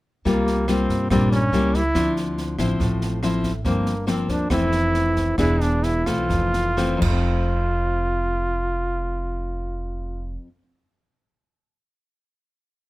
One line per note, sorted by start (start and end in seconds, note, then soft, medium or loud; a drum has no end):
0.25 0.85 C2 medium
0.25 1.08 C3 soft
0.25 0.64 G3 soft
0.25 0.64 A#3 soft
0.25 0.71 A#3 medium
0.25 0.65 F4 soft
0.25 kick soft
0.25 snare soft
0.47 snare soft
0.68 1.07 G3 soft
0.68 1.07 A#3 soft
0.68 1.11 C4 medium
0.68 1.07 F4 soft
0.68 cross-stick soft
0.68 snare soft
0.89 1.09 G2 medium
0.89 kick soft
0.89 snare soft
1.10 1.50 A#1 medium
1.10 1.51 G2 medium
1.10 1.39 G3 soft
1.10 1.39 A#3 soft
1.10 1.30 C4 medium
1.10 1.39 F4 medium
1.10 kick soft
1.10 cross-stick soft
1.10 snare soft
1.32 1.77 C#4 medium
1.32 snare soft
1.52 1.92 C#2 medium
1.52 1.80 G3 soft
1.52 1.80 A#3 medium
1.52 1.80 E4 medium
1.52 snare soft
1.74 2.17 E4 medium
1.74 kick soft
1.74 snare soft
1.95 2.55 D2 medium
1.95 2.78 D3 soft
1.95 2.55 F3 medium
1.95 2.56 C4 soft
1.95 2.56 E4 medium
1.95 kick soft
1.95 cross-stick medium
1.95 snare soft
2.17 snare soft
2.38 snare soft
2.58 2.78 A1 medium
2.58 3.19 F3 soft
2.58 3.19 C4 medium
2.58 3.19 E4 medium
2.58 kick soft
2.58 cross-stick soft
2.58 snare soft
2.80 3.61 A1 medium
2.80 3.63 A2 soft
2.80 kick medium
2.80 snare soft
3.01 snare soft
3.23 3.51 F3 medium
3.23 3.51 C4 medium
3.23 3.52 E4 medium
3.23 cross-stick soft
3.23 snare soft
3.44 kick soft
3.44 snare soft
3.65 4.25 G1 medium
3.65 4.48 G2 soft
3.65 3.92 F3 soft
3.65 3.92 A#3 soft
3.65 4.05 A#3 medium
3.65 3.93 C4 medium
3.65 kick soft
3.65 snare soft
3.86 snare soft
4.07 4.46 F3 soft
4.07 4.47 A#3 soft
4.07 4.47 C4 medium
4.07 4.31 C4 medium
4.07 cross-stick soft
4.07 snare soft
4.29 4.49 D2 medium
4.29 4.50 D4 medium
4.29 kick soft
4.29 snare soft
4.50 5.34 F1 medium
4.50 5.36 F2 soft
4.50 5.34 E3 medium
4.50 5.34 A3 medium
4.50 5.35 C4 medium
4.50 5.34 E4 medium
4.50 kick soft
4.50 cross-stick medium
4.50 snare soft
4.72 snare soft
4.94 snare soft
5.16 kick soft
5.16 snare soft
5.38 6.02 E1 medium
5.38 6.05 E3 soft
5.38 6.03 B3 soft
5.38 6.03 D4 soft
5.38 5.63 E4 medium
5.38 6.03 G#4 medium
5.38 kick soft
5.38 cross-stick medium
5.38 snare soft
5.61 5.85 D4 medium
5.61 snare soft
5.83 6.09 E4 medium
5.83 snare soft
6.06 6.28 B1 medium
6.06 6.73 E3 medium
6.06 6.74 A3 medium
6.06 6.74 C4 medium
6.06 7.02 F4 medium
6.06 kick soft
6.06 cross-stick soft
6.06 snare soft
6.29 6.98 F1 medium
6.29 6.96 F2 soft
6.29 kick medium
6.29 snare soft
6.53 snare soft
6.77 7.01 E3 soft
6.77 7.01 A3 medium
6.77 7.02 C4 medium
6.77 cross-stick soft
6.77 snare soft
6.97 10.47 F2 soft
7.02 10.35 F1 medium
7.02 10.36 F4 medium
7.02 kick medium
7.02 crash medium
7.08 10.58 A3 medium
7.12 10.62 C4 medium